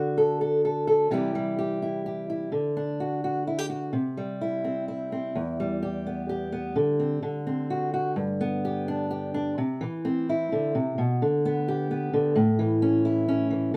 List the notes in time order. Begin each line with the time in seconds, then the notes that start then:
Already playing: D3 F#4
0.17 A4
0.41 A4
0.65 A4
0.87 A4
1.11 C3 E3 G3 E4 G4
1.35 G3
1.59 G4
1.82 E4
2.06 G4
2.30 E4
2.52 D3
2.77 D4
3.00 F#4
3.24 F#4
3.47 E4
3.58 G4
3.70 F#4
3.93 C3
4.17 G3
4.41 E4
4.64 C4
4.88 E4
5.12 C4
5.35 E2
5.60 G3
5.82 G4
6.06 B3
6.29 G4
6.52 B3
6.76 D3
7.00 C4
7.22 D3
7.47 C4
7.70 F#4
7.94 F#4
8.16 G2
8.41 B3
8.65 G4
8.88 D4
9.11 G4
9.34 D4
9.58 C3
9.81 E3
10.05 C4
10.29 E4
10.52 D3
10.75 C3
10.98 B2
11.22 D3
11.45 B3
11.68 G4
11.91 B3
12.13 D3
12.36 A2
12.59 E3
12.82 C#4
13.05 E4
13.28 C#4
13.50 E3